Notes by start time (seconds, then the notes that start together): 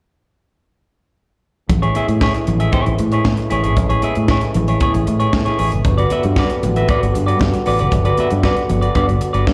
1.69 A1 C#3 E3 G#3 A3 E4, muted clean electric guitar stroke, kick, closed hi-hat, muted conga, low conga
1.82 E4 G#4 C#5, closed hi-hat
1.95 E4 G#4 E5, closed hi-hat, high conga
2.08 A2, muted clean electric guitar stroke, closed hi-hat
2.21 E4 G#4 C#5, kick, snare, muted conga
2.34 muted clean electric guitar stroke, closed hi-hat
2.47 A1, muted clean electric guitar stroke, closed hi-hat, high conga, low conga
2.60 E4 G#4 E5, closed hi-hat
2.72 E4 G#4 C#5, kick, closed hi-hat, high conga
2.86 A1, muted clean electric guitar stroke, closed hi-hat, muted conga
2.98 A2, muted clean electric guitar stroke, closed hi-hat
3.12 E4 G#4 C#5, closed hi-hat
3.24 A2, muted clean electric guitar stroke, kick, snare, high conga
3.37 muted clean electric guitar stroke, closed hi-hat
3.50 A1 E4 G#4 C#5, closed hi-hat
3.63 G#1 E4 G#4 C#5, closed hi-hat
3.76 A1, muted clean electric guitar stroke, kick, closed hi-hat, low conga
3.89 E4 G#4 C#5, closed hi-hat, muted conga
4.02 E4 G#4 E5, closed hi-hat, high conga
4.15 A2, muted clean electric guitar stroke, closed hi-hat
4.28 E4 G#4 C#5, kick, snare, muted conga
4.41 muted clean electric guitar stroke, closed hi-hat
4.54 A1, muted clean electric guitar stroke, closed hi-hat, high conga, low conga
4.68 E4 G#4 C#5, closed hi-hat
4.80 E4 G#4 C#5, kick, closed hi-hat, muted conga, high conga
4.94 A1, muted clean electric guitar stroke, closed hi-hat, muted conga
5.07 A2, muted clean electric guitar stroke, closed hi-hat
5.20 E4 G#4 C#5, closed hi-hat
5.33 A2, muted clean electric guitar stroke, kick, snare, muted conga, high conga
5.45 E4 G#4 C#5, closed hi-hat, muted conga
5.58 A1 E4 G#4 C#5, open hi-hat
5.72 F#1, muted clean electric guitar stroke, closed hi-hat
5.84 G1 D3 F#3 G3 B3 F#4, muted clean electric guitar stroke, kick, closed hi-hat, low conga
5.98 F#4 B4 D5, closed hi-hat
6.10 F#4 B4 E5, closed hi-hat, high conga
6.23 G2, muted clean electric guitar stroke, closed hi-hat
6.36 F#4 B4 D5, kick, snare, muted conga
6.50 muted clean electric guitar stroke, closed hi-hat, muted conga
6.63 A1, muted clean electric guitar stroke, closed hi-hat, high conga, low conga
6.76 F#4 B4 E5, closed hi-hat
6.88 F#4 B4 D5, kick, closed hi-hat, high conga
7.01 G1, muted clean electric guitar stroke, closed hi-hat
7.14 G2, muted clean electric guitar stroke, closed hi-hat
7.27 F#4 B4 D5, closed hi-hat
7.40 G2, muted clean electric guitar stroke, kick, snare, muted conga, high conga
7.54 muted clean electric guitar stroke, closed hi-hat
7.66 A1 F#4 B4 D5, open hi-hat
7.79 F#1 F#4 B4 D5, closed hi-hat
7.91 G1, muted clean electric guitar stroke, kick, closed hi-hat, low conga
8.05 F#4 B4 D5, closed hi-hat
8.17 F#4 B4 E5, closed hi-hat, high conga
8.30 G2, muted clean electric guitar stroke, closed hi-hat
8.43 F#4 B4 D5, kick, snare
8.56 muted clean electric guitar stroke, closed hi-hat
8.69 G1, muted clean electric guitar stroke, closed hi-hat, high conga, low conga
8.82 F#4 B4 D5, closed hi-hat
8.95 G2 F#4 B4 D5, kick, closed hi-hat, muted conga, high conga
9.08 G1, muted clean electric guitar stroke, closed hi-hat
9.21 muted clean electric guitar stroke, closed hi-hat
9.33 G1 F#4 B4 D5, closed hi-hat
9.46 G2, muted clean electric guitar stroke, kick, snare, muted conga, high conga